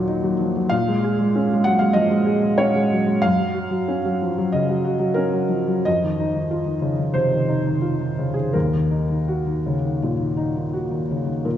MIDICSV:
0, 0, Header, 1, 2, 480
1, 0, Start_track
1, 0, Tempo, 632911
1, 545, Time_signature, 4, 2, 24, 8
1, 2939, Tempo, 647249
1, 3899, Tempo, 696056
1, 4379, Tempo, 641026
1, 5339, Tempo, 674157
1, 5819, Tempo, 724638
1, 8305, End_track
2, 0, Start_track
2, 0, Title_t, "Felt piano"
2, 0, Program_c, 0, 0
2, 0, Control_c, 0, 64, 127
2, 0, Note_on_c, 0, 39, 57
2, 0, Note_on_c, 0, 46, 46
2, 0, Note_on_c, 0, 53, 37
2, 0, Note_on_c, 0, 54, 45
2, 0, Note_on_c, 0, 63, 46
2, 0, Note_on_c, 0, 66, 47
2, 0, Note_on_c, 0, 70, 74
2, 57, Note_off_c, 0, 63, 0
2, 57, Note_on_c, 0, 63, 47
2, 130, Note_off_c, 0, 54, 0
2, 180, Note_on_c, 0, 54, 44
2, 253, Note_off_c, 0, 63, 0
2, 307, Note_off_c, 0, 53, 0
2, 307, Note_on_c, 0, 53, 39
2, 375, Note_off_c, 0, 54, 0
2, 427, Note_off_c, 0, 53, 0
2, 430, Note_on_c, 0, 54, 42
2, 527, Note_on_c, 0, 77, 93
2, 545, Note_off_c, 0, 46, 0
2, 545, Note_on_c, 0, 46, 59
2, 548, Note_off_c, 0, 54, 0
2, 558, Control_c, 0, 64, 0
2, 560, Note_off_c, 0, 39, 0
2, 561, Note_off_c, 0, 66, 0
2, 567, Note_off_c, 0, 70, 0
2, 668, Note_on_c, 0, 56, 47
2, 683, Control_c, 0, 64, 127
2, 790, Note_on_c, 0, 68, 53
2, 861, Note_off_c, 0, 56, 0
2, 901, Note_on_c, 0, 56, 45
2, 983, Note_off_c, 0, 68, 0
2, 1028, Note_on_c, 0, 61, 48
2, 1099, Note_off_c, 0, 56, 0
2, 1161, Note_on_c, 0, 56, 47
2, 1221, Note_off_c, 0, 61, 0
2, 1244, Note_on_c, 0, 78, 97
2, 1261, Note_off_c, 0, 77, 0
2, 1261, Note_on_c, 0, 54, 41
2, 1346, Note_off_c, 0, 56, 0
2, 1357, Note_on_c, 0, 77, 84
2, 1369, Note_on_c, 0, 56, 44
2, 1375, Note_off_c, 0, 78, 0
2, 1383, Note_off_c, 0, 54, 0
2, 1466, Note_on_c, 0, 75, 92
2, 1475, Note_off_c, 0, 46, 0
2, 1481, Note_on_c, 0, 53, 49
2, 1489, Note_off_c, 0, 77, 0
2, 1565, Note_off_c, 0, 56, 0
2, 1595, Note_on_c, 0, 56, 45
2, 1681, Note_off_c, 0, 53, 0
2, 1711, Note_on_c, 0, 68, 45
2, 1799, Note_off_c, 0, 56, 0
2, 1841, Note_on_c, 0, 56, 44
2, 1917, Note_off_c, 0, 68, 0
2, 1954, Note_on_c, 0, 73, 90
2, 1958, Note_on_c, 0, 61, 46
2, 1961, Note_off_c, 0, 75, 0
2, 2042, Note_off_c, 0, 56, 0
2, 2089, Note_on_c, 0, 56, 45
2, 2160, Note_off_c, 0, 61, 0
2, 2215, Note_on_c, 0, 54, 37
2, 2283, Note_off_c, 0, 56, 0
2, 2323, Note_on_c, 0, 56, 45
2, 2335, Note_off_c, 0, 54, 0
2, 2440, Note_on_c, 0, 77, 101
2, 2442, Note_off_c, 0, 73, 0
2, 2448, Note_off_c, 0, 56, 0
2, 2456, Note_on_c, 0, 42, 60
2, 2467, Control_c, 0, 64, 0
2, 2575, Note_on_c, 0, 54, 45
2, 2605, Control_c, 0, 64, 127
2, 2686, Note_on_c, 0, 66, 49
2, 2768, Note_off_c, 0, 54, 0
2, 2810, Note_on_c, 0, 54, 47
2, 2885, Note_off_c, 0, 66, 0
2, 2945, Note_on_c, 0, 61, 47
2, 3007, Note_off_c, 0, 54, 0
2, 3071, Note_on_c, 0, 54, 47
2, 3134, Note_off_c, 0, 61, 0
2, 3194, Note_on_c, 0, 53, 38
2, 3257, Note_off_c, 0, 54, 0
2, 3306, Note_off_c, 0, 53, 0
2, 3315, Note_on_c, 0, 54, 43
2, 3390, Note_off_c, 0, 42, 0
2, 3411, Note_off_c, 0, 77, 0
2, 3420, Note_on_c, 0, 75, 73
2, 3433, Note_on_c, 0, 49, 46
2, 3498, Note_off_c, 0, 54, 0
2, 3546, Note_on_c, 0, 54, 44
2, 3616, Note_off_c, 0, 49, 0
2, 3657, Note_on_c, 0, 66, 45
2, 3731, Note_off_c, 0, 54, 0
2, 3768, Note_on_c, 0, 54, 40
2, 3848, Note_off_c, 0, 66, 0
2, 3879, Note_on_c, 0, 70, 79
2, 3890, Note_on_c, 0, 61, 44
2, 3898, Note_off_c, 0, 75, 0
2, 3963, Note_off_c, 0, 54, 0
2, 4008, Note_on_c, 0, 54, 41
2, 4083, Note_off_c, 0, 61, 0
2, 4119, Note_on_c, 0, 53, 37
2, 4207, Note_off_c, 0, 54, 0
2, 4250, Note_off_c, 0, 53, 0
2, 4250, Note_on_c, 0, 54, 39
2, 4369, Note_off_c, 0, 70, 0
2, 4370, Note_on_c, 0, 75, 84
2, 4373, Note_off_c, 0, 54, 0
2, 4381, Note_on_c, 0, 41, 53
2, 4389, Control_c, 0, 64, 0
2, 4492, Control_c, 0, 64, 127
2, 4501, Note_on_c, 0, 51, 44
2, 4626, Note_on_c, 0, 63, 44
2, 4693, Note_off_c, 0, 51, 0
2, 4748, Note_on_c, 0, 51, 42
2, 4814, Note_off_c, 0, 63, 0
2, 4859, Note_on_c, 0, 65, 41
2, 4933, Note_off_c, 0, 51, 0
2, 4971, Note_on_c, 0, 51, 42
2, 5049, Note_off_c, 0, 65, 0
2, 5091, Note_on_c, 0, 49, 34
2, 5164, Note_off_c, 0, 51, 0
2, 5213, Note_off_c, 0, 49, 0
2, 5218, Note_on_c, 0, 51, 38
2, 5310, Note_off_c, 0, 41, 0
2, 5331, Note_on_c, 0, 72, 74
2, 5333, Note_off_c, 0, 75, 0
2, 5340, Note_on_c, 0, 48, 37
2, 5407, Note_off_c, 0, 51, 0
2, 5461, Note_on_c, 0, 51, 37
2, 5526, Note_off_c, 0, 48, 0
2, 5578, Note_on_c, 0, 63, 37
2, 5648, Note_off_c, 0, 51, 0
2, 5709, Note_on_c, 0, 51, 37
2, 5770, Note_off_c, 0, 63, 0
2, 5816, Note_on_c, 0, 65, 38
2, 5895, Note_off_c, 0, 51, 0
2, 5941, Note_on_c, 0, 51, 37
2, 6005, Note_off_c, 0, 65, 0
2, 6061, Note_on_c, 0, 49, 31
2, 6128, Note_off_c, 0, 51, 0
2, 6161, Note_on_c, 0, 68, 53
2, 6170, Note_on_c, 0, 51, 33
2, 6171, Note_off_c, 0, 72, 0
2, 6177, Note_off_c, 0, 49, 0
2, 6288, Note_off_c, 0, 68, 0
2, 6289, Note_on_c, 0, 70, 59
2, 6293, Note_off_c, 0, 51, 0
2, 6302, Note_on_c, 0, 39, 45
2, 6310, Control_c, 0, 64, 0
2, 6406, Control_c, 0, 64, 127
2, 6426, Note_on_c, 0, 51, 33
2, 6538, Note_on_c, 0, 63, 35
2, 6617, Note_off_c, 0, 51, 0
2, 6661, Note_on_c, 0, 51, 35
2, 6734, Note_off_c, 0, 63, 0
2, 6786, Note_on_c, 0, 66, 35
2, 6857, Note_off_c, 0, 51, 0
2, 6905, Note_on_c, 0, 51, 33
2, 6981, Note_off_c, 0, 66, 0
2, 7039, Note_on_c, 0, 49, 31
2, 7100, Note_off_c, 0, 51, 0
2, 7152, Note_on_c, 0, 51, 31
2, 7153, Note_off_c, 0, 49, 0
2, 7243, Note_off_c, 0, 39, 0
2, 7282, Note_on_c, 0, 46, 34
2, 7339, Note_off_c, 0, 51, 0
2, 7388, Note_on_c, 0, 51, 34
2, 7462, Note_off_c, 0, 46, 0
2, 7505, Note_on_c, 0, 63, 37
2, 7575, Note_off_c, 0, 51, 0
2, 7630, Note_on_c, 0, 51, 34
2, 7694, Note_off_c, 0, 63, 0
2, 7738, Note_off_c, 0, 70, 0
2, 7748, Note_on_c, 0, 66, 38
2, 7819, Note_off_c, 0, 51, 0
2, 7864, Note_on_c, 0, 51, 34
2, 7941, Note_off_c, 0, 66, 0
2, 7995, Note_on_c, 0, 49, 29
2, 8061, Note_off_c, 0, 51, 0
2, 8100, Note_on_c, 0, 51, 32
2, 8112, Note_off_c, 0, 49, 0
2, 8219, Note_off_c, 0, 51, 0
2, 8221, Note_on_c, 0, 46, 35
2, 8223, Note_on_c, 0, 70, 31
2, 8237, Control_c, 0, 64, 0
2, 8305, Note_off_c, 0, 46, 0
2, 8305, Note_off_c, 0, 70, 0
2, 8305, End_track
0, 0, End_of_file